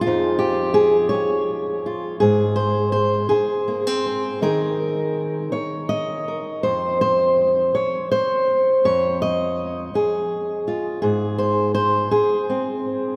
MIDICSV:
0, 0, Header, 1, 3, 480
1, 0, Start_track
1, 0, Tempo, 722892
1, 37, Time_signature, 6, 3, 24, 8
1, 2437, Tempo, 741656
1, 5317, Tempo, 726392
1, 8648, End_track
2, 0, Start_track
2, 0, Title_t, "Steel-string acoustic guitar"
2, 0, Program_c, 0, 25
2, 8, Note_on_c, 0, 65, 87
2, 39, Note_on_c, 0, 41, 64
2, 44, Note_on_c, 0, 53, 47
2, 49, Note_on_c, 0, 63, 46
2, 256, Note_on_c, 0, 67, 80
2, 488, Note_off_c, 0, 65, 0
2, 491, Note_on_c, 0, 68, 83
2, 721, Note_off_c, 0, 67, 0
2, 724, Note_on_c, 0, 73, 81
2, 753, Note_off_c, 0, 41, 0
2, 1221, Note_off_c, 0, 68, 0
2, 1235, Note_on_c, 0, 65, 48
2, 1445, Note_off_c, 0, 65, 0
2, 1458, Note_off_c, 0, 73, 0
2, 1462, Note_on_c, 0, 68, 81
2, 1471, Note_on_c, 0, 44, 68
2, 1476, Note_off_c, 0, 53, 0
2, 1698, Note_on_c, 0, 72, 85
2, 1932, Note_off_c, 0, 72, 0
2, 1940, Note_on_c, 0, 72, 84
2, 2176, Note_off_c, 0, 68, 0
2, 2184, Note_on_c, 0, 68, 67
2, 2188, Note_off_c, 0, 44, 0
2, 2372, Note_off_c, 0, 63, 0
2, 2442, Note_on_c, 0, 58, 42
2, 2565, Note_off_c, 0, 58, 0
2, 2565, Note_on_c, 0, 60, 38
2, 2671, Note_off_c, 0, 72, 0
2, 2691, Note_on_c, 0, 72, 45
2, 2895, Note_off_c, 0, 72, 0
2, 2911, Note_off_c, 0, 68, 0
2, 2920, Note_off_c, 0, 60, 0
2, 2921, Note_on_c, 0, 51, 66
2, 2923, Note_on_c, 0, 63, 48
2, 2927, Note_on_c, 0, 70, 86
2, 2930, Note_on_c, 0, 68, 51
2, 3629, Note_off_c, 0, 51, 0
2, 3632, Note_off_c, 0, 70, 0
2, 3634, Note_on_c, 0, 73, 76
2, 3874, Note_on_c, 0, 75, 90
2, 4119, Note_off_c, 0, 73, 0
2, 4126, Note_on_c, 0, 70, 43
2, 4336, Note_off_c, 0, 70, 0
2, 4337, Note_off_c, 0, 63, 0
2, 4354, Note_on_c, 0, 72, 81
2, 4360, Note_off_c, 0, 75, 0
2, 4365, Note_on_c, 0, 41, 66
2, 4592, Note_off_c, 0, 72, 0
2, 4600, Note_on_c, 0, 72, 88
2, 5073, Note_off_c, 0, 72, 0
2, 5075, Note_on_c, 0, 73, 80
2, 5083, Note_off_c, 0, 41, 0
2, 5196, Note_off_c, 0, 68, 0
2, 5311, Note_off_c, 0, 73, 0
2, 5314, Note_on_c, 0, 72, 85
2, 5797, Note_off_c, 0, 72, 0
2, 5797, Note_on_c, 0, 41, 70
2, 5801, Note_on_c, 0, 73, 85
2, 6039, Note_off_c, 0, 73, 0
2, 6042, Note_on_c, 0, 75, 89
2, 6513, Note_off_c, 0, 41, 0
2, 6528, Note_on_c, 0, 68, 74
2, 7000, Note_off_c, 0, 75, 0
2, 7006, Note_on_c, 0, 65, 50
2, 7212, Note_off_c, 0, 65, 0
2, 7224, Note_off_c, 0, 68, 0
2, 7232, Note_on_c, 0, 68, 75
2, 7240, Note_on_c, 0, 44, 71
2, 7474, Note_on_c, 0, 72, 82
2, 7704, Note_off_c, 0, 72, 0
2, 7712, Note_on_c, 0, 72, 91
2, 7948, Note_off_c, 0, 68, 0
2, 7953, Note_off_c, 0, 44, 0
2, 7956, Note_on_c, 0, 68, 74
2, 8209, Note_on_c, 0, 60, 48
2, 8437, Note_off_c, 0, 72, 0
2, 8648, Note_off_c, 0, 60, 0
2, 8648, Note_off_c, 0, 68, 0
2, 8648, End_track
3, 0, Start_track
3, 0, Title_t, "Muted steel-string acoustic guitar strokes"
3, 761, Note_on_c, 9, 29, 65
3, 827, Note_off_c, 9, 29, 0
3, 2196, Note_on_c, 9, 29, 67
3, 2262, Note_off_c, 9, 29, 0
3, 3636, Note_on_c, 9, 29, 56
3, 3701, Note_off_c, 9, 29, 0
3, 5086, Note_on_c, 9, 29, 62
3, 5151, Note_off_c, 9, 29, 0
3, 6521, Note_on_c, 9, 29, 64
3, 6587, Note_off_c, 9, 29, 0
3, 7960, Note_on_c, 9, 29, 67
3, 8026, Note_off_c, 9, 29, 0
3, 8648, End_track
0, 0, End_of_file